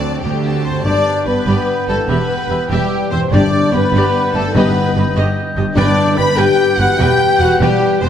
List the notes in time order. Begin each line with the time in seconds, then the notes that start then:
Already playing: D2 D3 F#3 A3 C4 D4 F#4 C5 D5 A5
0.01 A4
0.12 C5
0.21 D2 G3 A3 G4 D5 G5
0.32 A5
0.43 B3 C4 F#4 F#5 A5
0.54 C5
0.63 C4 A4 C5 C6
0.68 G2
0.72 B3 F#4
0.77 D4
0.82 G1 G2 D4 G4 D5 G5 D6
0.86 B4 D5
1.26 G1 G2 B3 G4 B4 D5 B5
1.46 G1 G2 G4 D5
1.87 G1 G2 A3 G4 A4 D5 A5
1.91 E2
1.96 B3
2.00 E4
2.05 E1 E2 B3 G4 B4 E5
2.09 B4 B5
2.49 E1 E2 G4 E5
2.70 E1 E2 G3 G4 E5 G5
3.11 E1 E2 G2 C4 G4 C5 E5 C6
3.23 D4
3.27 G4
3.31 G1 G2 D4 G4 D5 G5 D6
3.72 G1 G2 B3 G4 B4 D5 B5
3.93 G1 G2 G4 D5
4.34 G1 G2 A3 G4 A4 D5 A5
4.38 G2
4.42 C4
4.47 D#4
4.51 G1 G2 B3 G4 B4 D#5 B5
4.55 G4 B4 D#5
4.95 G1 G2 G4 D#5
5.14 G1 G2 G4 D#5
5.56 G1 G2 G4 D#5
5.64 B3
5.68 D4
5.73 G1 G2 D4 G4 B4 D5 G5 D6
5.77 G2 G5
6.16 G1 G2 B4 G5 B5 B6
6.37 G1 G2 G4 B4 G5 G6
6.78 G1 E2 G2 F#4 B4 F#5 G5 F#6
6.86 B3
6.90 E4
6.95 G4 G5
6.99 E1 E2 G4 B4 G5 G6
7.39 E1 E2 F#4 B4 F#5 G5 F#6
7.60 E1 E2 G3 G4 B4 G5
8.01 E1 E2 C4 B4 C5 G5 C6
8.05 G2